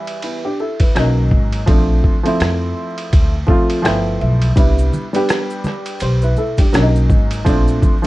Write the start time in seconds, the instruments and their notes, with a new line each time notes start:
Already playing: upright piano E3 G3 B3 E4
0.07 ride
0.22 upright piano B3 E4, ride
0.45 upright piano D4 G4
0.60 upright piano E4 A4
0.80 upright piano E4 B4, kick, ride
0.95 upright bass B1, upright piano F#3 A#3 C#4 D#4, cross-stick, hi-hat pedal, ride
1.31 upright bass G#1, kick
1.52 ride
1.66 upright bass A#1, upright piano F3 A3 C4 D4, kick, ride
2.04 kick
2.23 upright piano F3 A3 C4 E4, ride
2.40 upright bass F2, cross-stick, hi-hat pedal, ride
2.98 ride
3.13 upright bass D2, kick, ride
3.47 upright piano F3 A3 C4 F4, kick
3.70 ride
3.82 upright bass G1, upright piano F3 A3 B3 G5, cross-stick, hi-hat pedal, ride
3.86 upright piano E4
4.20 upright bass B1, upright piano E5
4.42 ride
4.56 upright bass C2, upright piano G3 B3 D4 E4, kick, ride, maracas
4.78 maracas
4.93 low conga, maracas
5.13 upright piano G3 B3 D4 G4, ride, maracas
5.29 cross-stick, hi-hat pedal, ride, maracas
5.50 maracas
5.64 cross-stick, high conga, low conga, maracas
5.86 ride, maracas
6.00 upright bass B1, upright piano G4 C5, ride, maracas
6.22 upright piano E4 B4, maracas
6.37 upright piano E4 A4, high conga, maracas
6.58 upright piano D4 G4, kick, ride, high conga, maracas
6.72 upright bass B1, upright piano F#3 A#3 C#4 D4, cross-stick, hi-hat pedal, ride, maracas
6.82 upright piano D#4
6.96 maracas
7.10 upright bass G#1, kick, low conga, maracas
7.31 ride, maracas
7.45 upright bass A#1, upright piano F3 A3 C4 D4, kick, ride, maracas
7.68 maracas
7.83 kick, low conga, maracas
8.02 upright piano F3 A3